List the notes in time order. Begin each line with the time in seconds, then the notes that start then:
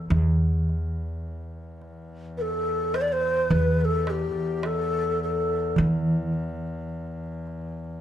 Already playing: E2
0.10 E2, darbuka dum
0.69 darbuka ka
1.81 darbuka ka
2.37 A4 B4, darbuka ka
2.94 C5, darbuka tek
3.01 D5
3.08 D5
3.12 C5
3.50 E2 B4, darbuka dum
3.80 A4 B4
4.07 G4, darbuka tek
4.63 A4, darbuka tek
5.21 A4, darbuka ka
5.76 E3, darbuka dum
6.33 darbuka ka
7.47 darbuka ka